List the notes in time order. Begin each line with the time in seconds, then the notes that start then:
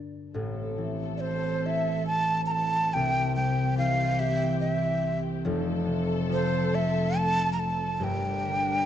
Already playing: G2 D3 A#3 D4
0.33 A1 A2 E3 C4 A4
0.78 E3
1.17 C5 D5
1.22 C4
1.66 E4 E5
2.07 A5
2.46 A#5
2.51 A5
2.93 C2 C3 G4 G5
3.36 G3 G5
3.78 E3 F5
4.19 G4 E5
4.60 E5
5.44 F1 F2 F3 A4
5.86 C3
6.29 F3 C5
6.71 A3 E5
7.18 A5
7.53 A#5
7.59 A5
8.00 G1 G2 G3 D4 A#4 G5
8.44 D3